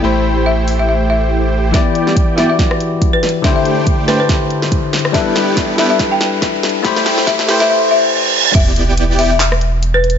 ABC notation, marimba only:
X:1
M:4/4
L:1/16
Q:"Swing 16ths" 1/4=141
K:Em
V:1 name="Marimba"
z4 e z2 e e z e3 z3 | e z4 z e e z4 z B z2 | e e z4 B B z8 | e z4 z e e z g4 z3 |
z4 e z2 e e z e3 z3 | e z4 z e e z4 z B z2 |]